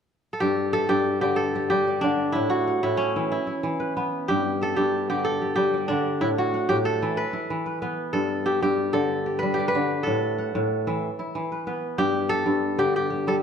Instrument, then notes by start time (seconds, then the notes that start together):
kora
0.33 A4
0.40 G2 G4
0.73 A4 E5
0.89 G2 G4
1.21 D3 G4 D5
1.36 A4
1.55 G4
1.70 G3 G4
1.87 D5
2.01 D3 D4 D5
2.32 A2 E4
2.50 F#4
2.67 F#5
2.83 A2 E4
2.97 C#4
3.16 E3 E5
3.32 E4
3.47 E4
3.63 E3
3.80 B4
3.97 B3 B4
4.28 G2 G4
4.61 A4 E5
4.76 G2 G4
5.10 D3 G4 D5
5.25 A4
5.42 G4
5.56 G3 G4
5.74 D5
5.88 D3 D4 D5
6.21 A2 E4
6.38 F#4
6.54 F#5
6.69 A2 G4
6.85 A4
7.02 E3 E5
7.17 B4
7.33 E4
7.50 E3
7.66 B4
7.82 B3 B4
8.13 G2 A4
8.46 G4 E5
8.62 G2 G4
8.93 D3 A4 D5
9.26 G4
9.39 G3 B4
9.54 G4
9.59 D5
9.68 B4
9.75 D3 D5
10.03 A2 A4
10.38 F#5
10.55 A2
10.87 E3 E5
11.19 E4
11.35 E3
11.52 B4
11.67 B3 B4
11.98 G2 G4
12.29 A4 E5
12.46 G2
12.78 D3 G4 D5
12.96 G4
13.10 G4
13.27 G3 A4